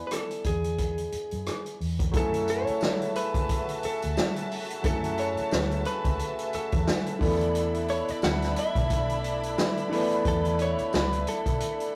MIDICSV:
0, 0, Header, 1, 8, 480
1, 0, Start_track
1, 0, Key_signature, 3, "minor"
1, 0, Tempo, 676437
1, 1518, Time_signature, 4, 2, 24, 8
1, 8483, End_track
2, 0, Start_track
2, 0, Title_t, "Clean electric guitar"
2, 0, Program_c, 0, 27
2, 50, Note_on_c, 0, 71, 56
2, 85, Note_off_c, 0, 71, 0
2, 92, Note_on_c, 0, 69, 76
2, 309, Note_off_c, 0, 69, 0
2, 330, Note_on_c, 0, 68, 69
2, 1256, Note_off_c, 0, 68, 0
2, 1540, Note_on_c, 0, 69, 96
2, 1774, Note_on_c, 0, 73, 102
2, 1776, Note_off_c, 0, 69, 0
2, 2218, Note_off_c, 0, 73, 0
2, 2245, Note_on_c, 0, 71, 96
2, 2733, Note_on_c, 0, 69, 80
2, 2736, Note_off_c, 0, 71, 0
2, 3177, Note_off_c, 0, 69, 0
2, 3447, Note_on_c, 0, 69, 104
2, 3686, Note_on_c, 0, 73, 101
2, 3689, Note_off_c, 0, 69, 0
2, 4159, Note_off_c, 0, 73, 0
2, 4162, Note_on_c, 0, 71, 103
2, 4647, Note_on_c, 0, 69, 79
2, 4654, Note_off_c, 0, 71, 0
2, 5094, Note_off_c, 0, 69, 0
2, 5605, Note_on_c, 0, 73, 83
2, 5752, Note_off_c, 0, 73, 0
2, 5752, Note_on_c, 0, 74, 87
2, 5845, Note_off_c, 0, 74, 0
2, 5848, Note_on_c, 0, 78, 107
2, 6066, Note_off_c, 0, 78, 0
2, 6095, Note_on_c, 0, 76, 93
2, 7017, Note_off_c, 0, 76, 0
2, 7294, Note_on_c, 0, 69, 98
2, 7509, Note_off_c, 0, 69, 0
2, 7535, Note_on_c, 0, 73, 98
2, 7749, Note_off_c, 0, 73, 0
2, 7767, Note_on_c, 0, 71, 93
2, 8005, Note_off_c, 0, 71, 0
2, 8008, Note_on_c, 0, 69, 87
2, 8483, Note_off_c, 0, 69, 0
2, 8483, End_track
3, 0, Start_track
3, 0, Title_t, "String section"
3, 0, Program_c, 1, 48
3, 1517, Note_on_c, 1, 66, 83
3, 1517, Note_on_c, 1, 76, 78
3, 1518, Note_on_c, 1, 81, 86
3, 5089, Note_off_c, 1, 66, 0
3, 5089, Note_off_c, 1, 76, 0
3, 5089, Note_off_c, 1, 81, 0
3, 5116, Note_on_c, 1, 64, 85
3, 5116, Note_on_c, 1, 83, 97
3, 5118, Note_on_c, 1, 62, 86
3, 8483, Note_off_c, 1, 62, 0
3, 8483, Note_off_c, 1, 64, 0
3, 8483, Note_off_c, 1, 83, 0
3, 8483, End_track
4, 0, Start_track
4, 0, Title_t, "Grand piano"
4, 0, Program_c, 2, 0
4, 0, Control_c, 2, 64, 127
4, 0, Note_on_c, 2, 52, 61
4, 0, Note_on_c, 2, 59, 51
4, 0, Note_on_c, 2, 62, 51
4, 0, Note_on_c, 2, 80, 62
4, 1241, Note_off_c, 2, 52, 0
4, 1244, Note_off_c, 2, 59, 0
4, 1249, Note_off_c, 2, 62, 0
4, 1253, Note_off_c, 2, 80, 0
4, 1501, Note_on_c, 2, 54, 63
4, 1506, Note_on_c, 2, 57, 56
4, 1512, Note_on_c, 2, 61, 56
4, 1520, Note_on_c, 2, 64, 56
4, 1525, Note_on_c, 2, 68, 55
4, 1527, Control_c, 2, 64, 0
4, 1572, Note_on_c, 2, 69, 66
4, 1575, Note_off_c, 2, 68, 0
4, 1635, Control_c, 2, 64, 127
4, 3401, Note_off_c, 2, 54, 0
4, 3404, Note_off_c, 2, 57, 0
4, 3407, Note_off_c, 2, 61, 0
4, 3411, Note_off_c, 2, 64, 0
4, 3421, Note_on_c, 2, 54, 64
4, 3429, Note_on_c, 2, 57, 60
4, 3435, Note_on_c, 2, 61, 54
4, 3437, Note_off_c, 2, 69, 0
4, 3441, Note_on_c, 2, 64, 56
4, 3449, Note_on_c, 2, 69, 76
4, 5081, Note_off_c, 2, 54, 0
4, 5085, Note_off_c, 2, 57, 0
4, 5088, Note_off_c, 2, 61, 0
4, 5091, Note_off_c, 2, 64, 0
4, 5095, Note_off_c, 2, 69, 0
4, 5102, Note_on_c, 2, 52, 65
4, 5108, Note_on_c, 2, 57, 59
4, 5114, Note_on_c, 2, 59, 60
4, 5121, Note_on_c, 2, 62, 55
4, 5126, Note_on_c, 2, 69, 69
4, 5128, Control_c, 2, 64, 0
4, 5267, Control_c, 2, 64, 127
4, 7001, Note_off_c, 2, 52, 0
4, 7004, Note_off_c, 2, 57, 0
4, 7007, Note_off_c, 2, 59, 0
4, 7010, Note_off_c, 2, 62, 0
4, 7012, Note_off_c, 2, 69, 0
4, 7021, Note_on_c, 2, 52, 78
4, 7030, Note_on_c, 2, 57, 67
4, 7034, Note_on_c, 2, 59, 70
4, 7041, Note_on_c, 2, 62, 74
4, 7049, Note_on_c, 2, 71, 89
4, 8483, Note_off_c, 2, 52, 0
4, 8483, Note_off_c, 2, 57, 0
4, 8483, Note_off_c, 2, 59, 0
4, 8483, Note_off_c, 2, 62, 0
4, 8483, Note_off_c, 2, 71, 0
4, 8483, End_track
5, 0, Start_track
5, 0, Title_t, "Accordion"
5, 0, Program_c, 3, 21
5, 1519, Note_on_c, 3, 49, 77
5, 1519, Note_on_c, 3, 54, 68
5, 1519, Note_on_c, 3, 64, 86
5, 1522, Note_on_c, 3, 57, 74
5, 5090, Note_off_c, 3, 49, 0
5, 5090, Note_off_c, 3, 54, 0
5, 5120, Note_on_c, 3, 62, 82
5, 5122, Note_on_c, 3, 59, 74
5, 8483, Note_off_c, 3, 57, 0
5, 8483, Note_off_c, 3, 59, 0
5, 8483, Note_off_c, 3, 62, 0
5, 8483, Note_off_c, 3, 64, 0
5, 8483, End_track
6, 0, Start_track
6, 0, Title_t, "Fingered electric bass"
6, 0, Program_c, 4, 33
6, 321, Note_on_c, 4, 40, 72
6, 748, Note_off_c, 4, 40, 0
6, 940, Note_on_c, 4, 42, 68
6, 1029, Note_off_c, 4, 42, 0
6, 1281, Note_on_c, 4, 40, 68
6, 1494, Note_off_c, 4, 40, 0
6, 1520, Note_on_c, 4, 42, 95
6, 1857, Note_off_c, 4, 42, 0
6, 2865, Note_on_c, 4, 38, 78
6, 2952, Note_off_c, 4, 38, 0
6, 3440, Note_on_c, 4, 42, 110
6, 3777, Note_off_c, 4, 42, 0
6, 3921, Note_on_c, 4, 38, 82
6, 4134, Note_off_c, 4, 38, 0
6, 4295, Note_on_c, 4, 37, 89
6, 4386, Note_off_c, 4, 37, 0
6, 4776, Note_on_c, 4, 40, 84
6, 4866, Note_off_c, 4, 40, 0
6, 5120, Note_on_c, 4, 40, 92
6, 5671, Note_off_c, 4, 40, 0
6, 5843, Note_on_c, 4, 38, 107
6, 6054, Note_off_c, 4, 38, 0
6, 6215, Note_on_c, 4, 35, 96
6, 6768, Note_off_c, 4, 35, 0
6, 7277, Note_on_c, 4, 40, 106
6, 7615, Note_off_c, 4, 40, 0
6, 7762, Note_on_c, 4, 37, 86
6, 7974, Note_off_c, 4, 37, 0
6, 8136, Note_on_c, 4, 35, 82
6, 8226, Note_off_c, 4, 35, 0
6, 8483, End_track
7, 0, Start_track
7, 0, Title_t, "Muted fingered electric bass strokes"
7, 800, Note_on_c, 9, 29, 44
7, 871, Note_off_c, 9, 29, 0
7, 1899, Note_on_c, 9, 29, 46
7, 1970, Note_off_c, 9, 29, 0
7, 2722, Note_on_c, 9, 29, 48
7, 2793, Note_off_c, 9, 29, 0
7, 3824, Note_on_c, 9, 29, 48
7, 3895, Note_off_c, 9, 29, 0
7, 4642, Note_on_c, 9, 29, 47
7, 4713, Note_off_c, 9, 29, 0
7, 5743, Note_on_c, 9, 29, 48
7, 5814, Note_off_c, 9, 29, 0
7, 7662, Note_on_c, 9, 29, 48
7, 7733, Note_off_c, 9, 29, 0
7, 8483, End_track
8, 0, Start_track
8, 0, Title_t, "Drums"
8, 76, Note_on_c, 9, 42, 88
8, 82, Note_on_c, 9, 37, 96
8, 147, Note_off_c, 9, 42, 0
8, 153, Note_off_c, 9, 37, 0
8, 216, Note_on_c, 9, 42, 46
8, 287, Note_off_c, 9, 42, 0
8, 314, Note_on_c, 9, 42, 76
8, 317, Note_on_c, 9, 36, 82
8, 385, Note_off_c, 9, 42, 0
8, 388, Note_off_c, 9, 36, 0
8, 455, Note_on_c, 9, 42, 47
8, 526, Note_off_c, 9, 42, 0
8, 555, Note_on_c, 9, 42, 73
8, 557, Note_on_c, 9, 36, 72
8, 626, Note_off_c, 9, 42, 0
8, 628, Note_off_c, 9, 36, 0
8, 693, Note_on_c, 9, 42, 51
8, 764, Note_off_c, 9, 42, 0
8, 796, Note_on_c, 9, 42, 63
8, 867, Note_off_c, 9, 42, 0
8, 930, Note_on_c, 9, 42, 48
8, 1001, Note_off_c, 9, 42, 0
8, 1038, Note_on_c, 9, 42, 71
8, 1042, Note_on_c, 9, 37, 86
8, 1109, Note_off_c, 9, 42, 0
8, 1113, Note_off_c, 9, 37, 0
8, 1176, Note_on_c, 9, 42, 46
8, 1247, Note_off_c, 9, 42, 0
8, 1285, Note_on_c, 9, 46, 52
8, 1356, Note_off_c, 9, 46, 0
8, 1414, Note_on_c, 9, 36, 85
8, 1417, Note_on_c, 9, 42, 52
8, 1485, Note_off_c, 9, 36, 0
8, 1488, Note_off_c, 9, 42, 0
8, 1515, Note_on_c, 9, 42, 76
8, 1516, Note_on_c, 9, 36, 110
8, 1586, Note_off_c, 9, 42, 0
8, 1587, Note_off_c, 9, 36, 0
8, 1658, Note_on_c, 9, 42, 57
8, 1729, Note_off_c, 9, 42, 0
8, 1757, Note_on_c, 9, 42, 76
8, 1828, Note_off_c, 9, 42, 0
8, 1894, Note_on_c, 9, 42, 46
8, 1965, Note_off_c, 9, 42, 0
8, 1992, Note_on_c, 9, 54, 90
8, 2004, Note_on_c, 9, 38, 97
8, 2063, Note_off_c, 9, 54, 0
8, 2075, Note_off_c, 9, 38, 0
8, 2139, Note_on_c, 9, 42, 48
8, 2210, Note_off_c, 9, 42, 0
8, 2238, Note_on_c, 9, 42, 86
8, 2309, Note_off_c, 9, 42, 0
8, 2373, Note_on_c, 9, 36, 93
8, 2375, Note_on_c, 9, 42, 57
8, 2444, Note_off_c, 9, 36, 0
8, 2446, Note_off_c, 9, 42, 0
8, 2476, Note_on_c, 9, 42, 84
8, 2479, Note_on_c, 9, 36, 85
8, 2547, Note_off_c, 9, 42, 0
8, 2550, Note_off_c, 9, 36, 0
8, 2615, Note_on_c, 9, 42, 58
8, 2686, Note_off_c, 9, 42, 0
8, 2717, Note_on_c, 9, 42, 69
8, 2788, Note_off_c, 9, 42, 0
8, 2853, Note_on_c, 9, 42, 59
8, 2924, Note_off_c, 9, 42, 0
8, 2958, Note_on_c, 9, 54, 83
8, 2962, Note_on_c, 9, 38, 104
8, 3029, Note_off_c, 9, 54, 0
8, 3033, Note_off_c, 9, 38, 0
8, 3094, Note_on_c, 9, 42, 53
8, 3165, Note_off_c, 9, 42, 0
8, 3202, Note_on_c, 9, 46, 82
8, 3273, Note_off_c, 9, 46, 0
8, 3336, Note_on_c, 9, 42, 60
8, 3407, Note_off_c, 9, 42, 0
8, 3433, Note_on_c, 9, 42, 82
8, 3436, Note_on_c, 9, 36, 111
8, 3504, Note_off_c, 9, 42, 0
8, 3507, Note_off_c, 9, 36, 0
8, 3574, Note_on_c, 9, 42, 56
8, 3645, Note_off_c, 9, 42, 0
8, 3673, Note_on_c, 9, 42, 75
8, 3744, Note_off_c, 9, 42, 0
8, 3811, Note_on_c, 9, 42, 45
8, 3882, Note_off_c, 9, 42, 0
8, 3912, Note_on_c, 9, 54, 81
8, 3920, Note_on_c, 9, 38, 107
8, 3983, Note_off_c, 9, 54, 0
8, 3991, Note_off_c, 9, 38, 0
8, 4053, Note_on_c, 9, 42, 50
8, 4124, Note_off_c, 9, 42, 0
8, 4152, Note_on_c, 9, 42, 85
8, 4223, Note_off_c, 9, 42, 0
8, 4291, Note_on_c, 9, 36, 88
8, 4291, Note_on_c, 9, 42, 54
8, 4362, Note_off_c, 9, 36, 0
8, 4362, Note_off_c, 9, 42, 0
8, 4394, Note_on_c, 9, 42, 83
8, 4465, Note_off_c, 9, 42, 0
8, 4531, Note_on_c, 9, 42, 63
8, 4602, Note_off_c, 9, 42, 0
8, 4633, Note_on_c, 9, 42, 74
8, 4704, Note_off_c, 9, 42, 0
8, 4769, Note_on_c, 9, 42, 56
8, 4773, Note_on_c, 9, 36, 103
8, 4840, Note_off_c, 9, 42, 0
8, 4844, Note_off_c, 9, 36, 0
8, 4879, Note_on_c, 9, 38, 109
8, 4880, Note_on_c, 9, 54, 87
8, 4950, Note_off_c, 9, 38, 0
8, 4951, Note_off_c, 9, 54, 0
8, 5012, Note_on_c, 9, 42, 53
8, 5083, Note_off_c, 9, 42, 0
8, 5115, Note_on_c, 9, 36, 103
8, 5121, Note_on_c, 9, 46, 82
8, 5186, Note_off_c, 9, 36, 0
8, 5192, Note_off_c, 9, 46, 0
8, 5257, Note_on_c, 9, 42, 59
8, 5328, Note_off_c, 9, 42, 0
8, 5355, Note_on_c, 9, 42, 86
8, 5426, Note_off_c, 9, 42, 0
8, 5495, Note_on_c, 9, 42, 53
8, 5566, Note_off_c, 9, 42, 0
8, 5593, Note_on_c, 9, 42, 75
8, 5664, Note_off_c, 9, 42, 0
8, 5735, Note_on_c, 9, 42, 45
8, 5806, Note_off_c, 9, 42, 0
8, 5834, Note_on_c, 9, 54, 88
8, 5840, Note_on_c, 9, 38, 106
8, 5905, Note_off_c, 9, 54, 0
8, 5911, Note_off_c, 9, 38, 0
8, 5976, Note_on_c, 9, 42, 49
8, 5980, Note_on_c, 9, 38, 37
8, 6047, Note_off_c, 9, 42, 0
8, 6051, Note_off_c, 9, 38, 0
8, 6075, Note_on_c, 9, 42, 87
8, 6146, Note_off_c, 9, 42, 0
8, 6212, Note_on_c, 9, 36, 90
8, 6214, Note_on_c, 9, 42, 55
8, 6283, Note_off_c, 9, 36, 0
8, 6285, Note_off_c, 9, 42, 0
8, 6315, Note_on_c, 9, 42, 82
8, 6317, Note_on_c, 9, 36, 85
8, 6386, Note_off_c, 9, 42, 0
8, 6388, Note_off_c, 9, 36, 0
8, 6454, Note_on_c, 9, 42, 58
8, 6524, Note_off_c, 9, 42, 0
8, 6557, Note_on_c, 9, 42, 71
8, 6628, Note_off_c, 9, 42, 0
8, 6693, Note_on_c, 9, 42, 55
8, 6764, Note_off_c, 9, 42, 0
8, 6799, Note_on_c, 9, 54, 86
8, 6801, Note_on_c, 9, 38, 112
8, 6870, Note_off_c, 9, 54, 0
8, 6872, Note_off_c, 9, 38, 0
8, 6934, Note_on_c, 9, 42, 53
8, 7005, Note_off_c, 9, 42, 0
8, 7042, Note_on_c, 9, 46, 81
8, 7113, Note_off_c, 9, 46, 0
8, 7176, Note_on_c, 9, 42, 59
8, 7247, Note_off_c, 9, 42, 0
8, 7273, Note_on_c, 9, 42, 82
8, 7275, Note_on_c, 9, 36, 110
8, 7344, Note_off_c, 9, 42, 0
8, 7346, Note_off_c, 9, 36, 0
8, 7414, Note_on_c, 9, 42, 54
8, 7485, Note_off_c, 9, 42, 0
8, 7513, Note_on_c, 9, 42, 82
8, 7584, Note_off_c, 9, 42, 0
8, 7653, Note_on_c, 9, 42, 43
8, 7724, Note_off_c, 9, 42, 0
8, 7754, Note_on_c, 9, 54, 83
8, 7762, Note_on_c, 9, 38, 107
8, 7825, Note_off_c, 9, 54, 0
8, 7833, Note_off_c, 9, 38, 0
8, 7895, Note_on_c, 9, 42, 53
8, 7966, Note_off_c, 9, 42, 0
8, 7996, Note_on_c, 9, 42, 88
8, 8067, Note_off_c, 9, 42, 0
8, 8131, Note_on_c, 9, 36, 86
8, 8133, Note_on_c, 9, 42, 52
8, 8202, Note_off_c, 9, 36, 0
8, 8204, Note_off_c, 9, 42, 0
8, 8234, Note_on_c, 9, 42, 86
8, 8305, Note_off_c, 9, 42, 0
8, 8373, Note_on_c, 9, 42, 62
8, 8444, Note_off_c, 9, 42, 0
8, 8483, End_track
0, 0, End_of_file